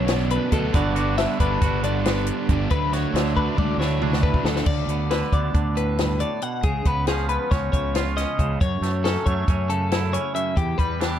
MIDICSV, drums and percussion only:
0, 0, Header, 1, 2, 480
1, 0, Start_track
1, 0, Key_signature, 2, "major"
1, 0, Tempo, 436999
1, 811, Time_signature, 9, 3, 24, 8
1, 12292, End_track
2, 0, Start_track
2, 0, Title_t, "Drums"
2, 87, Note_on_c, 9, 42, 94
2, 97, Note_on_c, 9, 38, 118
2, 197, Note_off_c, 9, 42, 0
2, 206, Note_off_c, 9, 38, 0
2, 334, Note_on_c, 9, 42, 67
2, 443, Note_off_c, 9, 42, 0
2, 569, Note_on_c, 9, 42, 60
2, 573, Note_on_c, 9, 36, 72
2, 679, Note_off_c, 9, 42, 0
2, 683, Note_off_c, 9, 36, 0
2, 810, Note_on_c, 9, 42, 84
2, 815, Note_on_c, 9, 36, 110
2, 920, Note_off_c, 9, 42, 0
2, 925, Note_off_c, 9, 36, 0
2, 1054, Note_on_c, 9, 42, 60
2, 1164, Note_off_c, 9, 42, 0
2, 1295, Note_on_c, 9, 42, 72
2, 1305, Note_on_c, 9, 38, 100
2, 1405, Note_off_c, 9, 42, 0
2, 1415, Note_off_c, 9, 38, 0
2, 1537, Note_on_c, 9, 42, 57
2, 1538, Note_on_c, 9, 36, 62
2, 1647, Note_off_c, 9, 42, 0
2, 1648, Note_off_c, 9, 36, 0
2, 1774, Note_on_c, 9, 42, 76
2, 1778, Note_on_c, 9, 36, 102
2, 1884, Note_off_c, 9, 42, 0
2, 1887, Note_off_c, 9, 36, 0
2, 2015, Note_on_c, 9, 42, 53
2, 2125, Note_off_c, 9, 42, 0
2, 2257, Note_on_c, 9, 42, 82
2, 2267, Note_on_c, 9, 38, 112
2, 2367, Note_off_c, 9, 42, 0
2, 2376, Note_off_c, 9, 38, 0
2, 2487, Note_on_c, 9, 42, 64
2, 2597, Note_off_c, 9, 42, 0
2, 2735, Note_on_c, 9, 42, 55
2, 2737, Note_on_c, 9, 36, 71
2, 2845, Note_off_c, 9, 42, 0
2, 2847, Note_off_c, 9, 36, 0
2, 2970, Note_on_c, 9, 42, 69
2, 2977, Note_on_c, 9, 36, 97
2, 3080, Note_off_c, 9, 42, 0
2, 3087, Note_off_c, 9, 36, 0
2, 3220, Note_on_c, 9, 42, 53
2, 3230, Note_on_c, 9, 38, 32
2, 3330, Note_off_c, 9, 42, 0
2, 3340, Note_off_c, 9, 38, 0
2, 3465, Note_on_c, 9, 42, 72
2, 3475, Note_on_c, 9, 38, 104
2, 3575, Note_off_c, 9, 42, 0
2, 3585, Note_off_c, 9, 38, 0
2, 3698, Note_on_c, 9, 36, 53
2, 3808, Note_off_c, 9, 36, 0
2, 3935, Note_on_c, 9, 36, 101
2, 3936, Note_on_c, 9, 48, 64
2, 4045, Note_off_c, 9, 36, 0
2, 4046, Note_off_c, 9, 48, 0
2, 4184, Note_on_c, 9, 38, 65
2, 4294, Note_off_c, 9, 38, 0
2, 4412, Note_on_c, 9, 45, 78
2, 4522, Note_off_c, 9, 45, 0
2, 4539, Note_on_c, 9, 38, 68
2, 4649, Note_off_c, 9, 38, 0
2, 4649, Note_on_c, 9, 36, 89
2, 4758, Note_off_c, 9, 36, 0
2, 4768, Note_on_c, 9, 36, 80
2, 4878, Note_off_c, 9, 36, 0
2, 4892, Note_on_c, 9, 38, 84
2, 5002, Note_off_c, 9, 38, 0
2, 5009, Note_on_c, 9, 38, 82
2, 5119, Note_off_c, 9, 38, 0
2, 5120, Note_on_c, 9, 49, 83
2, 5125, Note_on_c, 9, 36, 108
2, 5230, Note_off_c, 9, 49, 0
2, 5235, Note_off_c, 9, 36, 0
2, 5368, Note_on_c, 9, 42, 53
2, 5478, Note_off_c, 9, 42, 0
2, 5610, Note_on_c, 9, 42, 74
2, 5620, Note_on_c, 9, 38, 94
2, 5720, Note_off_c, 9, 42, 0
2, 5730, Note_off_c, 9, 38, 0
2, 5850, Note_on_c, 9, 36, 65
2, 5852, Note_on_c, 9, 42, 50
2, 5960, Note_off_c, 9, 36, 0
2, 5962, Note_off_c, 9, 42, 0
2, 6091, Note_on_c, 9, 36, 92
2, 6091, Note_on_c, 9, 42, 68
2, 6201, Note_off_c, 9, 36, 0
2, 6201, Note_off_c, 9, 42, 0
2, 6335, Note_on_c, 9, 42, 53
2, 6445, Note_off_c, 9, 42, 0
2, 6574, Note_on_c, 9, 42, 78
2, 6583, Note_on_c, 9, 38, 110
2, 6683, Note_off_c, 9, 42, 0
2, 6693, Note_off_c, 9, 38, 0
2, 6809, Note_on_c, 9, 42, 63
2, 6919, Note_off_c, 9, 42, 0
2, 7047, Note_on_c, 9, 42, 52
2, 7157, Note_off_c, 9, 42, 0
2, 7285, Note_on_c, 9, 42, 76
2, 7291, Note_on_c, 9, 36, 105
2, 7395, Note_off_c, 9, 42, 0
2, 7400, Note_off_c, 9, 36, 0
2, 7526, Note_on_c, 9, 42, 51
2, 7531, Note_on_c, 9, 36, 72
2, 7636, Note_off_c, 9, 42, 0
2, 7640, Note_off_c, 9, 36, 0
2, 7764, Note_on_c, 9, 42, 82
2, 7774, Note_on_c, 9, 38, 96
2, 7874, Note_off_c, 9, 42, 0
2, 7884, Note_off_c, 9, 38, 0
2, 8007, Note_on_c, 9, 42, 53
2, 8117, Note_off_c, 9, 42, 0
2, 8254, Note_on_c, 9, 42, 84
2, 8255, Note_on_c, 9, 36, 101
2, 8264, Note_on_c, 9, 38, 31
2, 8364, Note_off_c, 9, 36, 0
2, 8364, Note_off_c, 9, 42, 0
2, 8374, Note_off_c, 9, 38, 0
2, 8493, Note_on_c, 9, 36, 69
2, 8495, Note_on_c, 9, 42, 62
2, 8603, Note_off_c, 9, 36, 0
2, 8605, Note_off_c, 9, 42, 0
2, 8731, Note_on_c, 9, 42, 80
2, 8741, Note_on_c, 9, 38, 106
2, 8841, Note_off_c, 9, 42, 0
2, 8850, Note_off_c, 9, 38, 0
2, 8980, Note_on_c, 9, 42, 68
2, 8990, Note_on_c, 9, 38, 35
2, 9090, Note_off_c, 9, 42, 0
2, 9100, Note_off_c, 9, 38, 0
2, 9216, Note_on_c, 9, 36, 69
2, 9219, Note_on_c, 9, 42, 54
2, 9326, Note_off_c, 9, 36, 0
2, 9328, Note_off_c, 9, 42, 0
2, 9459, Note_on_c, 9, 36, 104
2, 9459, Note_on_c, 9, 42, 75
2, 9568, Note_off_c, 9, 36, 0
2, 9569, Note_off_c, 9, 42, 0
2, 9702, Note_on_c, 9, 42, 56
2, 9712, Note_on_c, 9, 38, 32
2, 9812, Note_off_c, 9, 42, 0
2, 9822, Note_off_c, 9, 38, 0
2, 9940, Note_on_c, 9, 42, 67
2, 9950, Note_on_c, 9, 38, 98
2, 10050, Note_off_c, 9, 42, 0
2, 10060, Note_off_c, 9, 38, 0
2, 10175, Note_on_c, 9, 36, 61
2, 10175, Note_on_c, 9, 42, 50
2, 10285, Note_off_c, 9, 36, 0
2, 10285, Note_off_c, 9, 42, 0
2, 10413, Note_on_c, 9, 36, 92
2, 10414, Note_on_c, 9, 42, 73
2, 10523, Note_off_c, 9, 36, 0
2, 10524, Note_off_c, 9, 42, 0
2, 10652, Note_on_c, 9, 42, 58
2, 10761, Note_off_c, 9, 42, 0
2, 10891, Note_on_c, 9, 42, 77
2, 10901, Note_on_c, 9, 38, 102
2, 11001, Note_off_c, 9, 42, 0
2, 11011, Note_off_c, 9, 38, 0
2, 11138, Note_on_c, 9, 42, 67
2, 11248, Note_off_c, 9, 42, 0
2, 11376, Note_on_c, 9, 42, 57
2, 11486, Note_off_c, 9, 42, 0
2, 11611, Note_on_c, 9, 36, 101
2, 11611, Note_on_c, 9, 42, 76
2, 11720, Note_off_c, 9, 36, 0
2, 11721, Note_off_c, 9, 42, 0
2, 11850, Note_on_c, 9, 36, 74
2, 11855, Note_on_c, 9, 42, 56
2, 11960, Note_off_c, 9, 36, 0
2, 11965, Note_off_c, 9, 42, 0
2, 12095, Note_on_c, 9, 42, 74
2, 12105, Note_on_c, 9, 38, 89
2, 12205, Note_off_c, 9, 42, 0
2, 12214, Note_off_c, 9, 38, 0
2, 12292, End_track
0, 0, End_of_file